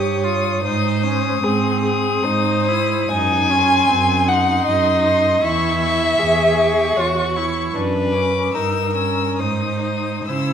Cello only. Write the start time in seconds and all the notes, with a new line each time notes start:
Already playing: G2
0.64 G#2
1.44 G#2
2.24 G#2
3.10 F#2
3.88 F#2
4.65 F#2
5.43 E2
6.19 E2
6.97 E2
7.75 F#2
8.54 G2
9.38 G#2
10.26 C#3